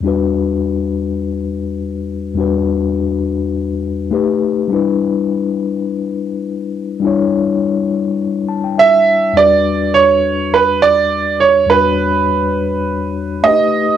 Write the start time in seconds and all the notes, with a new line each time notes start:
0.00 E2 G3 D4
0.06 F#4 B4
2.34 E2 G3 D4
2.38 F#4 B4
4.11 A3 D#4 G4 B4
4.68 G3 D4
4.72 E4 B4
7.00 G3 D4
7.05 E4 C#5
8.49 A5
8.64 G5
8.78 E5
9.33 E2 G3 D4
9.37 F#4 B4 D5
9.94 C#5
10.54 B4
10.82 D5
11.40 C#5
11.66 E2 G3 D4 B4
11.71 F#4 C#5
13.43 A3 D4 G4 B4 D#5
13.51 D#4